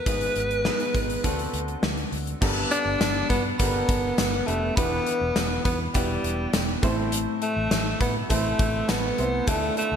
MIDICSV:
0, 0, Header, 1, 6, 480
1, 0, Start_track
1, 0, Tempo, 588235
1, 53, Time_signature, 4, 2, 24, 8
1, 8129, End_track
2, 0, Start_track
2, 0, Title_t, "Synth bell"
2, 0, Program_c, 0, 98
2, 2211, Note_on_c, 0, 86, 88
2, 2659, Note_off_c, 0, 86, 0
2, 2687, Note_on_c, 0, 83, 84
2, 2796, Note_off_c, 0, 83, 0
2, 2923, Note_on_c, 0, 83, 90
2, 3615, Note_off_c, 0, 83, 0
2, 3642, Note_on_c, 0, 81, 76
2, 3883, Note_on_c, 0, 83, 87
2, 3887, Note_off_c, 0, 81, 0
2, 4575, Note_off_c, 0, 83, 0
2, 4607, Note_on_c, 0, 83, 85
2, 4716, Note_off_c, 0, 83, 0
2, 4849, Note_on_c, 0, 79, 72
2, 5538, Note_off_c, 0, 79, 0
2, 6053, Note_on_c, 0, 81, 72
2, 6501, Note_off_c, 0, 81, 0
2, 6531, Note_on_c, 0, 83, 78
2, 6639, Note_off_c, 0, 83, 0
2, 6768, Note_on_c, 0, 81, 84
2, 7218, Note_off_c, 0, 81, 0
2, 7247, Note_on_c, 0, 83, 80
2, 7727, Note_on_c, 0, 81, 79
2, 7730, Note_off_c, 0, 83, 0
2, 7961, Note_off_c, 0, 81, 0
2, 7971, Note_on_c, 0, 81, 75
2, 8129, Note_off_c, 0, 81, 0
2, 8129, End_track
3, 0, Start_track
3, 0, Title_t, "Grand piano"
3, 0, Program_c, 1, 0
3, 0, Control_c, 1, 64, 127
3, 48, Note_on_c, 1, 59, 71
3, 53, Note_on_c, 1, 44, 63
3, 53, Note_on_c, 1, 63, 65
3, 54, Note_on_c, 1, 68, 67
3, 58, Note_on_c, 1, 71, 78
3, 65, Control_c, 1, 64, 0
3, 223, Control_c, 1, 64, 127
3, 353, Note_off_c, 1, 59, 0
3, 356, Note_off_c, 1, 63, 0
3, 356, Note_off_c, 1, 68, 0
3, 359, Note_off_c, 1, 71, 0
3, 525, Note_on_c, 1, 59, 85
3, 529, Note_on_c, 1, 63, 81
3, 531, Note_on_c, 1, 68, 79
3, 535, Note_on_c, 1, 71, 90
3, 741, Note_off_c, 1, 44, 0
3, 1006, Note_on_c, 1, 60, 87
3, 1008, Note_on_c, 1, 62, 75
3, 1009, Note_off_c, 1, 59, 0
3, 1011, Note_off_c, 1, 63, 0
3, 1011, Note_on_c, 1, 50, 68
3, 1012, Note_off_c, 1, 68, 0
3, 1013, Note_on_c, 1, 66, 78
3, 1014, Note_off_c, 1, 71, 0
3, 1014, Note_on_c, 1, 69, 95
3, 1022, Control_c, 1, 64, 0
3, 1168, Control_c, 1, 64, 127
3, 1699, Note_off_c, 1, 50, 0
3, 1777, Note_off_c, 1, 60, 0
3, 1779, Note_off_c, 1, 62, 0
3, 1781, Note_off_c, 1, 66, 0
3, 1782, Note_off_c, 1, 69, 0
3, 1966, Note_on_c, 1, 59, 93
3, 1970, Note_on_c, 1, 62, 85
3, 1973, Note_on_c, 1, 43, 81
3, 1973, Note_on_c, 1, 67, 86
3, 1975, Note_on_c, 1, 69, 81
3, 1977, Note_on_c, 1, 70, 80
3, 1983, Control_c, 1, 64, 0
3, 2028, Note_off_c, 1, 70, 0
3, 2029, Note_on_c, 1, 71, 98
3, 2115, Control_c, 1, 64, 127
3, 2575, Note_off_c, 1, 59, 0
3, 2577, Note_off_c, 1, 62, 0
3, 2579, Note_off_c, 1, 67, 0
3, 2580, Note_off_c, 1, 69, 0
3, 2607, Note_off_c, 1, 71, 0
3, 2660, Note_off_c, 1, 43, 0
3, 2929, Note_on_c, 1, 59, 75
3, 2929, Note_on_c, 1, 62, 65
3, 2932, Note_on_c, 1, 67, 71
3, 2936, Note_on_c, 1, 69, 67
3, 2938, Note_on_c, 1, 70, 68
3, 2989, Note_off_c, 1, 70, 0
3, 2990, Note_on_c, 1, 71, 78
3, 3385, Note_off_c, 1, 59, 0
3, 3386, Note_off_c, 1, 62, 0
3, 3387, Note_off_c, 1, 67, 0
3, 3389, Note_off_c, 1, 69, 0
3, 3416, Note_off_c, 1, 71, 0
3, 3648, Note_on_c, 1, 59, 69
3, 3651, Note_on_c, 1, 62, 65
3, 3654, Note_on_c, 1, 67, 63
3, 3658, Note_on_c, 1, 69, 62
3, 3660, Note_on_c, 1, 71, 76
3, 3802, Note_off_c, 1, 59, 0
3, 3804, Note_off_c, 1, 62, 0
3, 3805, Note_off_c, 1, 67, 0
3, 3807, Note_off_c, 1, 69, 0
3, 3808, Note_off_c, 1, 71, 0
3, 3887, Note_on_c, 1, 59, 76
3, 3892, Note_on_c, 1, 52, 66
3, 3892, Note_on_c, 1, 62, 72
3, 3893, Note_on_c, 1, 64, 70
3, 3894, Note_on_c, 1, 67, 68
3, 3898, Note_on_c, 1, 71, 89
3, 3905, Control_c, 1, 64, 0
3, 4026, Control_c, 1, 64, 127
3, 4496, Note_off_c, 1, 59, 0
3, 4498, Note_off_c, 1, 62, 0
3, 4499, Note_off_c, 1, 64, 0
3, 4499, Note_off_c, 1, 67, 0
3, 4501, Note_off_c, 1, 71, 0
3, 4580, Note_off_c, 1, 52, 0
3, 4845, Note_on_c, 1, 59, 75
3, 4848, Note_on_c, 1, 62, 71
3, 4852, Note_on_c, 1, 67, 66
3, 4853, Note_on_c, 1, 64, 72
3, 4856, Note_on_c, 1, 71, 81
3, 5303, Note_off_c, 1, 59, 0
3, 5305, Note_off_c, 1, 62, 0
3, 5307, Note_off_c, 1, 64, 0
3, 5307, Note_off_c, 1, 67, 0
3, 5309, Note_off_c, 1, 71, 0
3, 5569, Note_on_c, 1, 57, 95
3, 5570, Note_on_c, 1, 60, 89
3, 5572, Note_on_c, 1, 64, 91
3, 5574, Note_on_c, 1, 45, 81
3, 5575, Note_on_c, 1, 69, 92
3, 5579, Note_on_c, 1, 72, 114
3, 5585, Control_c, 1, 64, 0
3, 5728, Control_c, 1, 64, 127
3, 6261, Note_off_c, 1, 45, 0
3, 6339, Note_off_c, 1, 57, 0
3, 6339, Note_off_c, 1, 60, 0
3, 6341, Note_off_c, 1, 64, 0
3, 6342, Note_off_c, 1, 69, 0
3, 6344, Note_off_c, 1, 72, 0
3, 6768, Note_on_c, 1, 57, 78
3, 6772, Note_on_c, 1, 60, 68
3, 6775, Note_on_c, 1, 64, 69
3, 6778, Note_on_c, 1, 69, 71
3, 6779, Note_on_c, 1, 72, 84
3, 7225, Note_off_c, 1, 57, 0
3, 7227, Note_off_c, 1, 60, 0
3, 7228, Note_off_c, 1, 64, 0
3, 7230, Note_off_c, 1, 69, 0
3, 7230, Note_off_c, 1, 72, 0
3, 7492, Note_on_c, 1, 57, 70
3, 7492, Note_on_c, 1, 60, 68
3, 7496, Note_on_c, 1, 64, 65
3, 7500, Note_on_c, 1, 69, 65
3, 7500, Note_on_c, 1, 72, 78
3, 7644, Note_off_c, 1, 57, 0
3, 7644, Note_off_c, 1, 60, 0
3, 7646, Note_off_c, 1, 64, 0
3, 7648, Note_off_c, 1, 69, 0
3, 7648, Note_off_c, 1, 72, 0
3, 7729, Note_on_c, 1, 57, 77
3, 7731, Note_on_c, 1, 62, 75
3, 7734, Note_on_c, 1, 50, 66
3, 7734, Note_on_c, 1, 64, 70
3, 7736, Note_on_c, 1, 65, 74
3, 7738, Note_on_c, 1, 69, 87
3, 7744, Control_c, 1, 64, 0
3, 7888, Control_c, 1, 64, 127
3, 8129, Note_off_c, 1, 50, 0
3, 8129, Note_off_c, 1, 57, 0
3, 8129, Note_off_c, 1, 62, 0
3, 8129, Note_off_c, 1, 64, 0
3, 8129, Note_off_c, 1, 65, 0
3, 8129, Note_off_c, 1, 69, 0
3, 8129, End_track
4, 0, Start_track
4, 0, Title_t, "Alto saxophone"
4, 0, Program_c, 2, 65
4, 0, Note_on_c, 2, 71, 105
4, 1465, Note_off_c, 2, 71, 0
4, 2215, Note_on_c, 2, 62, 109
4, 2661, Note_off_c, 2, 62, 0
4, 2691, Note_on_c, 2, 59, 99
4, 2799, Note_off_c, 2, 59, 0
4, 2934, Note_on_c, 2, 59, 101
4, 3646, Note_on_c, 2, 57, 90
4, 3659, Note_off_c, 2, 59, 0
4, 3887, Note_off_c, 2, 57, 0
4, 3892, Note_on_c, 2, 59, 104
4, 4580, Note_off_c, 2, 59, 0
4, 4613, Note_on_c, 2, 59, 88
4, 4721, Note_off_c, 2, 59, 0
4, 4851, Note_on_c, 2, 55, 88
4, 5540, Note_off_c, 2, 55, 0
4, 6058, Note_on_c, 2, 57, 93
4, 6503, Note_off_c, 2, 57, 0
4, 6538, Note_on_c, 2, 59, 85
4, 6645, Note_off_c, 2, 59, 0
4, 6777, Note_on_c, 2, 57, 93
4, 7253, Note_on_c, 2, 59, 110
4, 7265, Note_off_c, 2, 57, 0
4, 7741, Note_on_c, 2, 57, 96
4, 7753, Note_off_c, 2, 59, 0
4, 7974, Note_off_c, 2, 57, 0
4, 7979, Note_on_c, 2, 57, 106
4, 8129, Note_off_c, 2, 57, 0
4, 8129, End_track
5, 0, Start_track
5, 0, Title_t, "Fingered electric bass"
5, 0, Program_c, 3, 33
5, 51, Note_on_c, 3, 32, 94
5, 224, Note_off_c, 3, 32, 0
5, 293, Note_on_c, 3, 32, 95
5, 552, Note_off_c, 3, 32, 0
5, 771, Note_on_c, 3, 32, 86
5, 944, Note_off_c, 3, 32, 0
5, 1014, Note_on_c, 3, 38, 92
5, 1186, Note_off_c, 3, 38, 0
5, 1251, Note_on_c, 3, 38, 92
5, 1425, Note_off_c, 3, 38, 0
5, 1489, Note_on_c, 3, 38, 86
5, 1663, Note_off_c, 3, 38, 0
5, 1730, Note_on_c, 3, 38, 86
5, 1904, Note_off_c, 3, 38, 0
5, 1973, Note_on_c, 3, 31, 104
5, 2146, Note_off_c, 3, 31, 0
5, 2328, Note_on_c, 3, 31, 91
5, 2417, Note_off_c, 3, 31, 0
5, 2450, Note_on_c, 3, 31, 102
5, 2624, Note_off_c, 3, 31, 0
5, 2693, Note_on_c, 3, 43, 84
5, 2866, Note_off_c, 3, 43, 0
5, 2934, Note_on_c, 3, 31, 104
5, 3107, Note_off_c, 3, 31, 0
5, 3172, Note_on_c, 3, 31, 105
5, 3345, Note_off_c, 3, 31, 0
5, 3413, Note_on_c, 3, 31, 90
5, 3586, Note_off_c, 3, 31, 0
5, 3655, Note_on_c, 3, 29, 92
5, 3827, Note_off_c, 3, 29, 0
5, 3893, Note_on_c, 3, 28, 105
5, 4066, Note_off_c, 3, 28, 0
5, 4253, Note_on_c, 3, 28, 99
5, 4339, Note_off_c, 3, 28, 0
5, 4373, Note_on_c, 3, 28, 97
5, 4546, Note_off_c, 3, 28, 0
5, 4612, Note_on_c, 3, 40, 98
5, 4786, Note_off_c, 3, 40, 0
5, 4855, Note_on_c, 3, 28, 100
5, 5027, Note_off_c, 3, 28, 0
5, 5093, Note_on_c, 3, 28, 104
5, 5266, Note_off_c, 3, 28, 0
5, 5333, Note_on_c, 3, 28, 94
5, 5506, Note_off_c, 3, 28, 0
5, 5574, Note_on_c, 3, 33, 100
5, 5919, Note_off_c, 3, 33, 0
5, 6173, Note_on_c, 3, 33, 97
5, 6260, Note_off_c, 3, 33, 0
5, 6294, Note_on_c, 3, 33, 103
5, 6466, Note_off_c, 3, 33, 0
5, 6532, Note_on_c, 3, 45, 93
5, 6705, Note_off_c, 3, 45, 0
5, 6774, Note_on_c, 3, 33, 103
5, 6947, Note_off_c, 3, 33, 0
5, 7013, Note_on_c, 3, 33, 100
5, 7186, Note_off_c, 3, 33, 0
5, 7256, Note_on_c, 3, 33, 93
5, 7427, Note_off_c, 3, 33, 0
5, 7496, Note_on_c, 3, 36, 85
5, 7668, Note_off_c, 3, 36, 0
5, 7732, Note_on_c, 3, 38, 109
5, 7905, Note_off_c, 3, 38, 0
5, 8092, Note_on_c, 3, 38, 87
5, 8129, Note_off_c, 3, 38, 0
5, 8129, End_track
6, 0, Start_track
6, 0, Title_t, "Drums"
6, 51, Note_on_c, 9, 36, 110
6, 52, Note_on_c, 9, 42, 99
6, 133, Note_off_c, 9, 36, 0
6, 133, Note_off_c, 9, 42, 0
6, 171, Note_on_c, 9, 42, 53
6, 253, Note_off_c, 9, 42, 0
6, 290, Note_on_c, 9, 42, 76
6, 371, Note_off_c, 9, 42, 0
6, 414, Note_on_c, 9, 42, 52
6, 496, Note_off_c, 9, 42, 0
6, 530, Note_on_c, 9, 38, 102
6, 612, Note_off_c, 9, 38, 0
6, 651, Note_on_c, 9, 42, 44
6, 733, Note_off_c, 9, 42, 0
6, 772, Note_on_c, 9, 36, 88
6, 774, Note_on_c, 9, 42, 71
6, 853, Note_off_c, 9, 36, 0
6, 856, Note_off_c, 9, 42, 0
6, 895, Note_on_c, 9, 42, 57
6, 977, Note_off_c, 9, 42, 0
6, 1012, Note_on_c, 9, 42, 93
6, 1014, Note_on_c, 9, 36, 93
6, 1094, Note_off_c, 9, 42, 0
6, 1096, Note_off_c, 9, 36, 0
6, 1136, Note_on_c, 9, 42, 52
6, 1218, Note_off_c, 9, 42, 0
6, 1253, Note_on_c, 9, 42, 73
6, 1335, Note_off_c, 9, 42, 0
6, 1372, Note_on_c, 9, 42, 47
6, 1453, Note_off_c, 9, 42, 0
6, 1492, Note_on_c, 9, 38, 119
6, 1574, Note_off_c, 9, 38, 0
6, 1611, Note_on_c, 9, 42, 42
6, 1692, Note_off_c, 9, 42, 0
6, 1733, Note_on_c, 9, 46, 68
6, 1815, Note_off_c, 9, 46, 0
6, 1854, Note_on_c, 9, 42, 52
6, 1935, Note_off_c, 9, 42, 0
6, 1973, Note_on_c, 9, 36, 116
6, 1976, Note_on_c, 9, 49, 104
6, 2055, Note_off_c, 9, 36, 0
6, 2057, Note_off_c, 9, 49, 0
6, 2213, Note_on_c, 9, 42, 80
6, 2295, Note_off_c, 9, 42, 0
6, 2455, Note_on_c, 9, 38, 112
6, 2455, Note_on_c, 9, 42, 91
6, 2455, Note_on_c, 9, 54, 60
6, 2536, Note_off_c, 9, 38, 0
6, 2536, Note_off_c, 9, 54, 0
6, 2537, Note_off_c, 9, 42, 0
6, 2693, Note_on_c, 9, 36, 95
6, 2697, Note_on_c, 9, 42, 81
6, 2775, Note_off_c, 9, 36, 0
6, 2778, Note_off_c, 9, 42, 0
6, 2933, Note_on_c, 9, 42, 109
6, 2935, Note_on_c, 9, 36, 102
6, 3015, Note_off_c, 9, 42, 0
6, 3017, Note_off_c, 9, 36, 0
6, 3173, Note_on_c, 9, 36, 105
6, 3175, Note_on_c, 9, 42, 76
6, 3254, Note_off_c, 9, 36, 0
6, 3257, Note_off_c, 9, 42, 0
6, 3411, Note_on_c, 9, 42, 90
6, 3413, Note_on_c, 9, 38, 123
6, 3413, Note_on_c, 9, 54, 69
6, 3492, Note_off_c, 9, 42, 0
6, 3494, Note_off_c, 9, 38, 0
6, 3495, Note_off_c, 9, 54, 0
6, 3656, Note_on_c, 9, 42, 76
6, 3738, Note_off_c, 9, 42, 0
6, 3894, Note_on_c, 9, 36, 119
6, 3895, Note_on_c, 9, 42, 99
6, 3976, Note_off_c, 9, 36, 0
6, 3976, Note_off_c, 9, 42, 0
6, 4133, Note_on_c, 9, 42, 81
6, 4214, Note_off_c, 9, 42, 0
6, 4372, Note_on_c, 9, 38, 117
6, 4373, Note_on_c, 9, 42, 94
6, 4373, Note_on_c, 9, 54, 63
6, 4454, Note_off_c, 9, 38, 0
6, 4454, Note_off_c, 9, 54, 0
6, 4455, Note_off_c, 9, 42, 0
6, 4612, Note_on_c, 9, 42, 84
6, 4613, Note_on_c, 9, 36, 97
6, 4693, Note_off_c, 9, 42, 0
6, 4694, Note_off_c, 9, 36, 0
6, 4850, Note_on_c, 9, 42, 98
6, 4855, Note_on_c, 9, 36, 103
6, 4931, Note_off_c, 9, 42, 0
6, 4937, Note_off_c, 9, 36, 0
6, 5095, Note_on_c, 9, 42, 78
6, 5176, Note_off_c, 9, 42, 0
6, 5331, Note_on_c, 9, 42, 89
6, 5333, Note_on_c, 9, 38, 127
6, 5333, Note_on_c, 9, 54, 69
6, 5413, Note_off_c, 9, 42, 0
6, 5415, Note_off_c, 9, 38, 0
6, 5415, Note_off_c, 9, 54, 0
6, 5573, Note_on_c, 9, 42, 75
6, 5574, Note_on_c, 9, 36, 109
6, 5654, Note_off_c, 9, 42, 0
6, 5655, Note_off_c, 9, 36, 0
6, 5811, Note_on_c, 9, 42, 109
6, 5893, Note_off_c, 9, 42, 0
6, 6052, Note_on_c, 9, 42, 81
6, 6134, Note_off_c, 9, 42, 0
6, 6293, Note_on_c, 9, 38, 108
6, 6293, Note_on_c, 9, 54, 61
6, 6294, Note_on_c, 9, 42, 95
6, 6375, Note_off_c, 9, 38, 0
6, 6375, Note_off_c, 9, 42, 0
6, 6375, Note_off_c, 9, 54, 0
6, 6533, Note_on_c, 9, 36, 96
6, 6533, Note_on_c, 9, 42, 77
6, 6615, Note_off_c, 9, 36, 0
6, 6615, Note_off_c, 9, 42, 0
6, 6772, Note_on_c, 9, 42, 102
6, 6775, Note_on_c, 9, 36, 99
6, 6854, Note_off_c, 9, 42, 0
6, 6857, Note_off_c, 9, 36, 0
6, 7012, Note_on_c, 9, 36, 107
6, 7012, Note_on_c, 9, 42, 73
6, 7093, Note_off_c, 9, 42, 0
6, 7094, Note_off_c, 9, 36, 0
6, 7251, Note_on_c, 9, 42, 89
6, 7253, Note_on_c, 9, 38, 122
6, 7253, Note_on_c, 9, 54, 69
6, 7333, Note_off_c, 9, 42, 0
6, 7335, Note_off_c, 9, 38, 0
6, 7335, Note_off_c, 9, 54, 0
6, 7493, Note_on_c, 9, 42, 76
6, 7575, Note_off_c, 9, 42, 0
6, 7731, Note_on_c, 9, 42, 104
6, 7733, Note_on_c, 9, 36, 123
6, 7812, Note_off_c, 9, 42, 0
6, 7814, Note_off_c, 9, 36, 0
6, 7973, Note_on_c, 9, 42, 83
6, 8054, Note_off_c, 9, 42, 0
6, 8129, End_track
0, 0, End_of_file